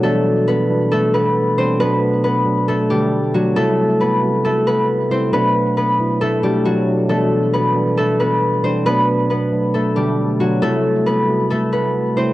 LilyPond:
<<
  \new Staff \with { instrumentName = "Harp" } { \time 4/4 \key e \minor \tempo 4 = 136 <a a'>4 <b b'>4 <a a'>8 <b b'>4 <c' c''>8 | <b b'>4 <b b'>4 <a a'>8 <g g'>4 <fis fis'>8 | <a a'>4 <b b'>4 <a a'>8 <b b'>4 <c' c''>8 | <b b'>4 <b b'>4 <a a'>8 <g g'>8 <fis fis'>8 r8 |
<a a'>4 <b b'>4 <a a'>8 <b b'>4 <c' c''>8 | <b b'>4 <b b'>4 <a a'>8 <g g'>4 <fis fis'>8 | <a a'>4 <b b'>4 <a a'>8 <b b'>4 <c' c''>8 | }
  \new Staff \with { instrumentName = "Tine electric piano" } { \clef bass \time 4/4 \key e \minor <b, e g d'>4 r8 <b, e g d'>4. r8 <b, e g d'>8 | <b, fis a d'>4 r8 <b, fis a d'>8. r16 <b, d a d'>8. r16 <b, fis a d'>8 | <c g a e'>4 r8 <c g a fis'>4. r8 <c g a e'>8 | <b, fis a d'>4 r8 <b, fis a e'>8. r16 <b, fis a d'>8. r16 <b, fis a d'>8 |
<b, e g d'>4 r8 <b, e g d'>4. r8 <b, e g d'>8 | <b, fis a d'>4 r8 <b, fis a d'>8. r16 <b, d a d'>8. r16 <b, fis a d'>8 | <c g a e'>4 r8 <c g a fis'>4. r8 <c g a e'>8 | }
>>